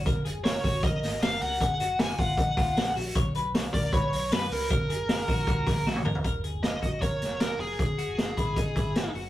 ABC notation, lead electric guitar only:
X:1
M:4/4
L:1/8
Q:1/4=155
K:F#
V:1 name="Lead electric guitar"
z2 c2 d2 e f- | f2 g f4 z | z3 =d c2 B A- | A6 z2 |
z2 d2 c2 A G- | G6- G z |]